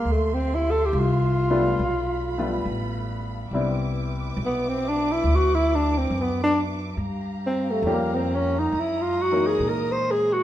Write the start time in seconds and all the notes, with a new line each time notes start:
Already playing: A#3 C6
0.05 D2 G4 E5 F5
0.12 A3
0.34 C4
0.55 E4
0.71 A4
0.86 G4
0.93 C2
0.99 F4
1.50 G3 A3 B3 D4 F4
1.77 B1 A4 B5
2.38 G3 A3 B3 D4 F4
2.65 A1
3.51 C2 G3 B3 C4 D4 E4 B4 E5 D6
4.37 B1
4.46 B3
4.69 C4
4.88 D4
5.12 E4
5.24 D2
5.35 F#4
5.55 E4
5.75 D4
5.98 C4
6.10 F#2
6.22 B3
6.44 D4
6.96 G2 G4 F5 A#5
7.47 C4
7.71 A3
7.82 F2 G3 C#4
7.87 A#3 F4 G4
7.94 A#3
8.15 C4
8.35 C#4
8.59 D#4
8.72 F#2 G#3 D#5 D#6
8.80 E4
9.02 F4
9.22 F#4
9.31 E3 A#3 C#4 D#4 A#4
9.47 G#4
9.60 A#2
9.69 A#4
9.92 C5
10.11 G#4
10.33 F#4